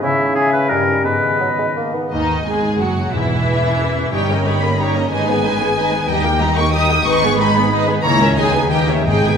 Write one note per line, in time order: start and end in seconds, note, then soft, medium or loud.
0.00 0.72 C#3 medium
0.00 0.71 C#3 medium
0.00 0.33 C#4 medium
0.00 0.33 E4 medium
0.00 0.71 G#4 soft
0.00 0.33 E5 medium
0.19 0.71 G#3 soft
0.35 0.69 C#4 medium
0.35 1.07 C#4 soft
0.35 0.52 G#4 medium
0.35 0.72 E5 medium
0.52 0.72 E4 soft
0.52 0.70 B4 medium
0.69 1.07 G2 soft
0.69 1.07 G3 medium
0.69 1.06 C#4 medium
0.69 1.04 A#4 medium
0.69 1.04 D#5 medium
0.88 1.57 D#4 soft
0.88 1.07 A#4 soft
1.04 2.11 G#2 medium
1.04 1.37 G#3 soft
1.04 1.94 B3 soft
1.04 1.75 B4 medium
1.04 1.92 D#5 soft
1.24 2.13 D#3 soft
1.41 1.49 F#3 medium
1.41 2.45 B3 soft
1.58 1.66 G#3 soft
1.58 1.93 D#4 soft
1.76 1.95 A#3 medium
1.76 2.78 G#4 soft
1.94 2.12 B3 medium
1.94 2.61 D#4 soft
2.11 2.43 D#2 medium
2.11 3.12 G#2 medium
2.11 2.43 D#3 medium
2.11 2.43 D#4 medium
2.11 2.44 D#5 medium
2.29 3.14 D#3 soft
2.46 2.78 G#1 medium
2.46 2.79 G#2 medium
2.46 2.79 G#3 medium
2.46 3.14 B3 soft
2.46 2.79 G#4 medium
2.46 2.79 G#5 medium
2.63 2.95 D#4 soft
2.79 3.13 F#1 medium
2.79 3.13 F#2 medium
2.79 3.12 F#3 medium
2.79 3.13 F#4 medium
2.79 4.14 G#4 soft
2.79 3.12 F#5 medium
2.96 3.14 D#4 soft
3.13 4.11 E1 medium
3.13 4.11 E2 medium
3.13 4.15 G#2 medium
3.13 4.13 E3 medium
3.13 4.11 E4 medium
3.13 4.13 E5 medium
3.30 4.15 G#3 soft
3.47 4.45 A#3 soft
3.63 3.95 C#4 soft
3.80 5.13 A#4 soft
3.97 5.13 C#4 soft
4.13 5.07 G1 medium
4.13 5.07 G2 soft
4.13 5.13 G2 medium
4.13 4.28 G3 soft
4.13 4.28 D#4 soft
4.13 4.28 G4 soft
4.13 4.28 C#5 soft
4.13 4.45 G5 medium
4.30 5.13 G3 soft
4.30 4.46 A#3 soft
4.30 4.46 C#4 soft
4.30 4.46 A#4 soft
4.30 4.46 D#5 soft
4.46 4.62 G3 soft
4.46 5.13 A#3 soft
4.46 4.62 D#4 soft
4.46 4.62 G4 soft
4.46 4.62 C#5 soft
4.46 4.78 B5 medium
4.62 4.78 A#3 medium
4.62 4.78 C#4 soft
4.62 4.94 D#4 soft
4.62 4.78 A#4 soft
4.62 4.78 D#5 soft
4.77 4.93 G3 soft
4.77 4.93 D#4 medium
4.77 4.94 G4 soft
4.77 5.13 C#5 soft
4.77 4.94 C#5 soft
4.77 5.12 A#5 medium
4.94 5.11 A#3 soft
4.94 5.11 C#4 soft
4.94 5.59 D#4 soft
4.94 5.12 A#4 soft
4.94 5.10 D#5 soft
5.10 6.06 G#1 medium
5.10 6.06 G#2 medium
5.10 6.10 G#2 medium
5.10 5.26 G#3 medium
5.10 5.26 D#4 medium
5.10 5.26 B4 medium
5.10 5.27 D#5 medium
5.10 6.07 G#5 medium
5.27 6.07 D#3 soft
5.27 5.44 B3 medium
5.27 5.44 G#4 soft
5.27 5.42 B4 medium
5.43 5.60 G#3 soft
5.43 6.10 B3 soft
5.43 5.60 D#4 medium
5.43 5.58 B4 medium
5.43 5.60 D#5 medium
5.59 5.76 B3 medium
5.59 5.91 D#4 medium
5.59 5.76 G#4 medium
5.59 5.74 B4 soft
5.76 5.91 G#3 soft
5.76 5.91 D#4 soft
5.76 5.91 B4 medium
5.76 5.91 D#5 medium
5.76 6.56 D#5 soft
5.92 6.08 B3 soft
5.92 6.39 D#4 medium
5.92 6.08 G#4 soft
5.92 6.08 B4 soft
6.08 7.03 D#2 medium
6.08 7.04 D#2 medium
6.08 7.07 D#3 medium
6.08 6.23 G3 medium
6.08 6.23 D#4 medium
6.08 6.23 G4 medium
6.08 6.23 D#5 medium
6.08 6.40 G5 medium
6.24 7.07 A#3 medium
6.24 6.40 A#3 medium
6.24 6.40 G4 medium
6.24 6.40 A#4 medium
6.24 6.40 G5 medium
6.40 6.56 G3 medium
6.40 6.57 D#4 medium
6.40 7.54 D#4 soft
6.40 6.56 G4 medium
6.40 6.56 D#5 medium
6.40 6.57 A#5 medium
6.56 6.73 A#3 medium
6.56 6.73 G4 medium
6.56 6.72 A#4 medium
6.56 6.88 D#5 medium
6.56 6.72 G5 medium
6.56 6.73 C#6 loud
6.72 6.88 G3 medium
6.72 6.88 D#4 medium
6.72 6.87 G4 medium
6.72 7.07 A#4 medium
6.72 6.87 D#5 medium
6.72 7.05 D#6 medium
6.89 7.06 A#3 medium
6.89 7.06 G4 medium
6.89 7.05 A#4 medium
6.89 7.71 D#5 medium
6.89 7.05 G5 medium
7.05 8.02 G#1 medium
7.05 8.02 G#2 medium
7.05 8.05 G#2 medium
7.05 7.21 G#3 medium
7.05 7.21 D#4 medium
7.05 7.21 B4 medium
7.05 7.21 D#5 medium
7.05 7.39 C#6 loud
7.22 8.05 D#3 medium
7.22 7.39 B3 medium
7.22 7.39 G#4 medium
7.22 7.37 B4 medium
7.38 8.05 G#3 medium
7.38 7.55 G#3 medium
7.38 7.55 D#4 medium
7.38 7.54 B4 medium
7.38 7.55 D#5 medium
7.38 7.87 B5 medium
7.55 7.71 B3 medium
7.55 7.87 D#4 medium
7.55 7.71 G#4 medium
7.55 7.70 B4 medium
7.71 7.87 G#3 medium
7.71 7.87 D#4 medium
7.71 7.86 B4 medium
7.71 7.86 D#5 medium
7.71 8.06 D#5 medium
7.87 8.04 B3 medium
7.87 8.06 D#4 medium
7.87 8.04 G#4 medium
7.87 8.04 B4 medium
8.03 8.36 C#2 medium
8.03 8.37 C#2 medium
8.03 8.39 C#3 medium
8.03 8.19 A#3 medium
8.03 8.19 E4 medium
8.03 8.19 C#5 medium
8.03 8.35 A#5 loud
8.20 8.37 C#4 medium
8.20 8.39 E4 soft
8.20 8.37 A#4 medium
8.20 8.39 C#5 medium
8.20 8.37 E5 medium
8.36 9.07 D#2 medium
8.36 8.71 D#3 medium
8.36 8.53 G#3 medium
8.36 8.53 D#4 medium
8.36 8.53 G#4 medium
8.36 8.52 D#5 medium
8.36 8.71 G#5 medium
8.53 8.71 B3 medium
8.53 8.89 D#4 medium
8.53 8.71 G#4 medium
8.53 8.71 B4 medium
8.53 8.73 B4 medium
8.53 8.71 G#5 medium
8.71 9.09 D#3 medium
8.71 8.88 A#3 soft
8.71 8.88 D#4 medium
8.71 8.87 G4 medium
8.71 8.88 D#5 medium
8.71 8.89 G5 medium
8.89 9.07 C#4 soft
8.89 9.38 D#4 soft
8.89 9.07 G4 medium
8.89 9.07 A#4 soft
8.89 9.09 A#4 medium
8.89 9.07 C#5 soft
8.89 9.07 E5 medium
9.06 9.38 G#1 medium
9.06 9.14 G#2 soft
9.06 9.38 G#2 medium
9.06 9.23 G#3 medium
9.06 9.23 D#4 medium
9.06 9.24 G#4 medium
9.06 9.24 D#5 medium
9.06 9.38 G5 medium
9.15 9.22 G#2 soft
9.23 9.30 G#2 soft
9.23 9.38 D#3 soft
9.23 9.38 B3 medium
9.23 9.38 G#4 soft
9.23 9.38 B4 soft
9.23 9.38 G#5 medium
9.31 9.38 G#2 soft